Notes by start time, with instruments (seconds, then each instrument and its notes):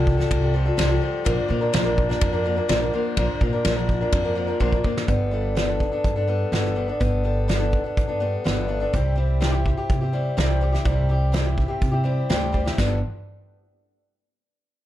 Already playing: upright bass C2, steel-string acoustic guitar G3 F4 A4
0.07 kick
0.17 steel-string acoustic guitar G3 F4 A4, snare
0.31 upright bass C2, kick, ride bell
0.42 steel-string acoustic guitar G3 F4 A4
0.54 steel-string acoustic guitar F3 G3 F4 A4
0.65 steel-string acoustic guitar G3 F4 A4
0.77 upright bass C2, steel-string acoustic guitar C3 F3 G3 F4 A4, snare, ride bell
0.89 steel-string acoustic guitar G3 F4 A4
1.01 steel-string acoustic guitar F3 G3 F4 A4
1.24 upright bass A#1, steel-string acoustic guitar A#2 D3 F3 A#3 D4 A#4, kick, ride bell
1.48 upright bass A#2, steel-string acoustic guitar F3 A#3 D4 A#4
1.61 steel-string acoustic guitar F3 A#3 D4 A#4
1.73 upright bass A#1, steel-string acoustic guitar A#2 D3 F3 A#3 D4 A#4, snare, ride bell
1.84 steel-string acoustic guitar F3 A#3 D4 A#4
1.98 kick
2.09 steel-string acoustic guitar F3 A#3 D4 A#4, snare
2.21 upright bass F2, kick, ride bell
2.32 steel-string acoustic guitar F3 A#3 D4 A#4
2.44 steel-string acoustic guitar F3 A#3 D4 A#4
2.56 steel-string acoustic guitar F3 A#3 D4 A#4
2.68 upright bass A#1, steel-string acoustic guitar A#2 D3 F3 A#3 D4 A#4, snare, ride bell
2.81 steel-string acoustic guitar F3 A#3 D4 A#4
2.93 steel-string acoustic guitar F3 A#3 D4 A#4
3.17 upright bass A#1, steel-string acoustic guitar A#2 D3 F3 A#3 D4 A#4, kick, ride bell
3.41 upright bass A#2, steel-string acoustic guitar F3 A#3 D4 A#4, kick
3.53 steel-string acoustic guitar F3 A#3 D4 A#4
3.65 upright bass A#1, steel-string acoustic guitar A#2 D3 F3 A#3 D4 A#4, snare, ride bell
3.76 steel-string acoustic guitar F3 A#3 D4 A#4
3.89 kick
4.01 steel-string acoustic guitar F3 A#3 D4 A#4
4.12 upright bass F2, kick, ride bell
4.25 steel-string acoustic guitar F3 A#3 D4 A#4
4.35 steel-string acoustic guitar F3 A#3 D4 A#4
4.47 steel-string acoustic guitar F3 A#3 D4 A#4
4.60 upright bass A#1, steel-string acoustic guitar A#2 D3 F3 A#3 D4 A#4, kick
4.72 steel-string acoustic guitar F3 A#3 D4 A#4, kick
4.84 steel-string acoustic guitar F3 A#3 D4 A#4, kick
4.97 snare
5.08 upright bass G1, steel-string acoustic guitar G3 B3 D4 A4, kick, closed hi-hat
5.31 steel-string acoustic guitar G3 B3 D4 A4
5.55 steel-string acoustic guitar G3 B3 D4 A4, snare, closed hi-hat
5.68 steel-string acoustic guitar B3 D4 A4
5.80 kick
5.92 steel-string acoustic guitar B3 D4 A4
6.04 upright bass G2, kick, closed hi-hat
6.16 steel-string acoustic guitar B3 D4 A4
6.28 steel-string acoustic guitar G3 B3 D4 A4
6.52 upright bass G1, steel-string acoustic guitar G3 B3 D4 A4, snare, closed hi-hat
6.66 snare
6.76 steel-string acoustic guitar G3 B3 D4 A4
6.88 steel-string acoustic guitar B3 D4 A4
7.00 upright bass G1, steel-string acoustic guitar G3 B3 D4 A4, kick, closed hi-hat
7.24 steel-string acoustic guitar G3 B3 D4 A4
7.48 steel-string acoustic guitar G3 B3 D4 A4, snare, closed hi-hat
7.60 steel-string acoustic guitar B3 D4 A4
7.73 kick
7.84 steel-string acoustic guitar B3 D4 A4
7.97 upright bass G2, kick, closed hi-hat
8.08 steel-string acoustic guitar B3 D4 A4
8.20 steel-string acoustic guitar G3 B3 D4 A4
8.44 upright bass G1, steel-string acoustic guitar G3 B3 D4 A4, snare, closed hi-hat
8.68 steel-string acoustic guitar G3 B3 D4 A4
8.80 steel-string acoustic guitar B3 D4 A4
8.93 upright bass C2, steel-string acoustic guitar C3 G3 C4 E4 G4, kick, closed hi-hat
9.16 steel-string acoustic guitar G3 C4 E4 G4
9.40 steel-string acoustic guitar C3 G3 C4 E4 G4, snare, closed hi-hat
9.52 steel-string acoustic guitar C4 E4 G4
9.66 kick
9.77 steel-string acoustic guitar C4 E4 G4
9.90 upright bass C3, kick, closed hi-hat
10.01 steel-string acoustic guitar C4 E4 G4
10.13 steel-string acoustic guitar G3 C4 E4 G4
10.37 upright bass C2, steel-string acoustic guitar C3 G3 C4 E4 G4, snare, closed hi-hat
10.61 steel-string acoustic guitar G3 C4 E4 G4
10.72 steel-string acoustic guitar C4 E4 G4, snare
10.85 upright bass C2, steel-string acoustic guitar C3 G3 C4 E4 G4, kick, closed hi-hat
11.09 steel-string acoustic guitar G3 C4 E4 G4
11.32 steel-string acoustic guitar C3 G3 C4 E4 G4, snare, closed hi-hat
11.44 steel-string acoustic guitar C4 E4 G4
11.58 kick
11.68 steel-string acoustic guitar C4 E4 G4
11.81 upright bass C3, kick, closed hi-hat
11.92 steel-string acoustic guitar C4 E4 G4
12.04 steel-string acoustic guitar G3 C4 E4 G4
12.29 upright bass D2, steel-string acoustic guitar C3 G3 C4 E4 G4, snare, closed hi-hat
12.52 steel-string acoustic guitar G3 C4 E4 G4, kick
12.65 steel-string acoustic guitar C4 E4 G4, snare
12.77 upright bass G1, steel-string acoustic guitar G3 B3 D4 A4, kick, snare, crash